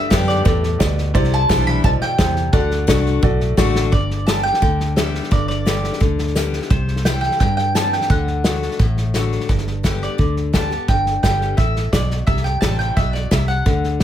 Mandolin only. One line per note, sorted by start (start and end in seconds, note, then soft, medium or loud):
0.10 0.15 E5 medium
0.28 0.44 D5 medium
0.45 0.93 D5 medium
1.34 1.67 A5 loud
1.67 1.84 B5 loud
1.84 1.89 A5 loud
2.02 2.52 G5 loud
2.53 3.53 F#5 medium
3.92 4.28 D5 medium
4.27 4.43 A5 medium
4.43 4.92 G5 loud
4.96 5.29 E5 medium
5.32 5.47 D5 medium
5.48 6.49 D5 medium
6.70 7.03 C5 medium
7.05 7.20 G5 medium
7.21 7.39 G5 medium
7.40 7.56 G5 medium
7.57 7.73 G5 medium
7.75 7.93 A5 medium
7.93 8.10 G5 medium
8.11 9.28 F#5 medium
10.03 10.34 D5 medium
10.54 10.86 A5 medium
10.89 11.21 G5 medium
11.23 11.57 G5 medium
11.57 11.93 E5 medium
11.93 12.17 D5 medium
12.27 12.44 E5 medium
12.44 12.60 G5 medium
12.61 12.78 A5 medium
12.79 12.96 G5 medium
12.96 13.14 E5 medium
13.13 13.30 D5 medium
13.31 13.48 E5 medium
13.48 13.97 F#5 medium